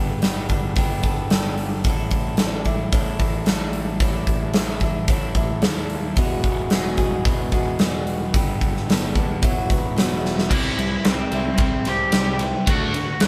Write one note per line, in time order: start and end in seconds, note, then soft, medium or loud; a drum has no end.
0.00 0.22 G1 medium
0.00 0.21 G3 medium
0.00 0.24 B3 medium
0.00 0.23 D4 medium
0.00 0.25 A4 loud
0.22 0.49 G1 medium
0.22 0.76 G3 medium
0.22 0.50 B3 medium
0.22 0.53 D4 medium
0.22 snare loud
0.22 open hi-hat medium
0.26 0.50 A4 medium
0.49 0.76 G1 medium
0.49 0.78 B3 medium
0.49 0.80 A4 medium
0.49 kick medium
0.49 open hi-hat soft
0.53 0.78 D4 medium
0.76 1.03 G1 medium
0.76 1.30 G3 loud
0.76 1.05 B3 loud
0.76 1.08 D4 loud
0.76 kick loud
0.76 open hi-hat medium
0.81 1.04 A4 medium
1.03 1.30 G1 medium
1.03 1.33 B3 medium
1.03 1.34 A4 medium
1.03 kick medium
1.03 open hi-hat soft
1.08 1.32 D4 medium
1.30 1.83 G1 medium
1.30 1.84 G3 medium
1.30 1.85 B3 medium
1.30 1.87 D4 medium
1.30 snare loud
1.30 open hi-hat medium
1.35 1.89 A4 medium
1.58 open hi-hat soft
1.84 2.11 A1 medium
1.84 2.92 A2 medium
1.84 2.37 D3 medium
1.84 2.39 D4 medium
1.84 kick loud
1.84 open hi-hat medium
1.89 2.41 E4 loud
1.89 2.42 A4 loud
2.11 2.38 A1 medium
2.11 kick medium
2.11 open hi-hat soft
2.37 2.65 A1 medium
2.37 2.92 D3 medium
2.37 2.68 D4 medium
2.37 snare loud
2.37 open hi-hat medium
2.41 2.66 E4 medium
2.41 2.64 A4 medium
2.64 2.92 A1 medium
2.64 2.92 D4 medium
2.64 2.94 E4 medium
2.64 2.94 A4 medium
2.64 kick medium
2.64 open hi-hat soft
2.92 3.19 A1 medium
2.92 3.47 A2 medium
2.92 3.44 D3 medium
2.92 3.21 D4 medium
2.92 3.21 E4 loud
2.92 3.18 A4 medium
2.92 kick loud
2.92 open hi-hat medium
3.19 3.46 A1 medium
3.19 3.45 D4 soft
3.19 3.47 E4 medium
3.19 3.48 A4 medium
3.19 kick medium
3.19 open hi-hat medium
3.46 3.99 A1 medium
3.46 4.00 D3 medium
3.46 4.01 D4 medium
3.46 4.03 E4 medium
3.46 4.02 A4 medium
3.46 snare loud
3.46 open hi-hat medium
3.73 open hi-hat medium
4.00 4.26 A1 loud
4.00 4.82 A2 medium
4.00 4.54 D3 medium
4.00 4.54 D4 loud
4.00 4.56 E4 medium
4.00 4.57 A4 medium
4.00 kick loud
4.00 open hi-hat medium
4.27 4.54 A1 loud
4.27 kick medium
4.27 open hi-hat medium
4.54 4.80 A1 medium
4.54 5.08 D3 medium
4.54 4.85 D4 medium
4.54 4.84 E4 medium
4.54 snare loud
4.54 open hi-hat medium
4.58 4.81 A4 medium
4.80 5.08 A1 medium
4.80 5.10 E4 medium
4.80 5.11 A4 medium
4.80 kick medium
4.80 open hi-hat soft
4.86 5.09 D4 medium
5.08 5.34 A1 medium
5.08 5.63 A2 medium
5.08 5.61 D3 medium
5.08 5.37 D4 medium
5.08 5.35 E4 medium
5.08 kick loud
5.08 open hi-hat medium
5.12 5.34 A4 medium
5.35 5.61 A1 medium
5.35 5.62 D4 medium
5.35 5.63 E4 medium
5.35 5.64 A4 medium
5.35 kick medium
5.35 open hi-hat medium
5.62 6.19 D#2 medium
5.62 6.15 D3 medium
5.62 6.16 D4 medium
5.62 6.17 E4 medium
5.62 6.17 A4 medium
5.62 snare loud
5.62 open hi-hat medium
5.90 open hi-hat soft
6.16 6.43 E1 medium
6.16 6.98 E2 medium
6.16 6.98 E3 loud
6.16 6.70 G#3 medium
6.16 6.72 B3 medium
6.16 6.73 F#4 loud
6.16 6.74 G#4 loud
6.16 kick loud
6.16 open hi-hat medium
6.44 6.70 E1 loud
6.44 kick medium
6.44 open hi-hat medium
6.70 6.97 E1 medium
6.70 7.01 G#3 medium
6.70 7.00 B3 medium
6.70 6.98 F#4 medium
6.70 snare loud
6.70 open hi-hat medium
6.75 6.97 G#4 medium
6.97 7.24 E1 medium
6.97 7.25 B3 medium
6.97 7.27 F#4 medium
6.97 7.27 G#4 medium
6.97 kick medium
6.97 open hi-hat soft
7.02 7.25 G#3 medium
7.25 7.52 E1 medium
7.25 7.80 E2 loud
7.25 7.80 E3 medium
7.25 7.56 G#3 medium
7.25 7.55 B3 medium
7.25 7.53 F#4 loud
7.25 7.52 G#4 medium
7.25 kick loud
7.25 open hi-hat medium
7.52 7.78 E1 medium
7.52 7.81 F#4 medium
7.52 7.81 G#4 medium
7.52 kick medium
7.52 open hi-hat soft
7.56 7.78 G#3 medium
7.56 7.80 B3 medium
7.79 8.32 E1 medium
7.79 8.32 G#3 medium
7.79 8.33 B3 medium
7.79 8.34 F#4 medium
7.79 8.34 G#4 medium
7.79 snare loud
7.79 open hi-hat medium
8.07 open hi-hat soft
8.34 8.60 G1 medium
8.34 8.88 G3 medium
8.34 8.90 B3 medium
8.34 8.89 D4 medium
8.34 kick loud
8.34 open hi-hat medium
8.39 8.91 A4 loud
8.61 8.87 G1 medium
8.61 kick medium
8.61 open hi-hat medium
8.77 snare soft
8.88 9.14 G1 medium
8.88 9.41 G3 medium
8.88 9.17 B3 medium
8.88 9.17 D4 medium
8.88 9.14 A4 medium
8.88 snare loud
8.88 open hi-hat medium
9.15 9.41 D#2 medium
9.15 9.42 B3 medium
9.15 9.43 D4 medium
9.15 9.41 A4 medium
9.15 kick medium
9.15 open hi-hat soft
9.42 9.69 E1 loud
9.42 9.97 E2 medium
9.42 9.97 E3 loud
9.42 9.71 F#3 loud
9.42 9.71 B3 medium
9.42 9.69 E4 loud
9.42 9.69 F#4 medium
9.42 kick loud
9.42 open hi-hat medium
9.70 9.96 E1 medium
9.70 9.95 F#3 medium
9.70 9.97 B3 medium
9.70 9.99 E4 medium
9.70 9.98 F#4 medium
9.70 kick medium
9.70 open hi-hat medium
9.96 10.49 E1 medium
9.96 10.49 F#3 medium
9.96 10.50 B3 medium
9.96 10.51 E4 medium
9.96 10.51 F#4 medium
9.96 snare loud
9.96 open hi-hat medium
10.25 snare medium
10.38 snare medium
10.50 10.70 C2 medium
10.50 10.76 C3 medium
10.50 11.87 C3 medium
10.50 10.76 G3 medium
10.50 10.77 C4 medium
10.50 11.03 E4 medium
10.50 11.08 E5 medium
10.50 kick loud
10.50 crash loud
10.78 10.97 C2 medium
10.78 11.02 C3 medium
10.78 12.14 E3 medium
10.78 11.03 G3 medium
10.78 ride medium
11.05 11.25 C2 medium
11.05 11.30 C3 medium
11.05 11.30 G3 medium
11.05 11.59 G3 medium
11.05 11.56 C4 medium
11.05 11.59 C5 medium
11.05 snare loud
11.05 ride medium
11.32 11.51 C2 medium
11.32 11.57 C3 medium
11.32 11.58 G3 medium
11.32 12.68 E4 medium
11.32 ride medium
11.58 11.78 C2 medium
11.58 11.85 C3 medium
11.58 12.14 G3 medium
11.58 11.85 G3 medium
11.58 11.86 C4 medium
11.58 11.88 C5 medium
11.58 kick loud
11.58 ride medium
11.85 12.06 C2 medium
11.85 12.12 C3 medium
11.85 12.12 G3 medium
11.85 12.69 C4 medium
11.85 12.38 G4 medium
11.85 snare soft
11.85 ride medium
11.89 12.39 G5 medium
12.12 12.52 C2 medium
12.12 12.39 C3 medium
12.12 12.39 G3 medium
12.12 12.69 G3 medium
12.12 snare loud
12.12 ride loud
12.39 12.65 C3 medium
12.39 12.69 E3 medium
12.39 12.65 G3 medium
12.39 ride medium
12.67 13.05 D2 medium
12.67 12.94 D3 medium
12.67 12.96 D3 medium
12.67 12.94 A3 medium
12.67 12.94 D4 medium
12.67 13.19 F#4 medium
12.67 13.25 F#5 loud
12.67 kick loud
12.67 ride loud
12.94 13.20 D3 medium
12.94 13.28 D3 medium
12.94 13.20 A3 medium
12.94 ride medium
13.20 13.28 D2 medium
13.20 13.28 D3 medium
13.20 13.28 A3 medium
13.20 snare loud
13.20 ride loud
13.25 13.28 A3 medium
13.25 13.28 D4 medium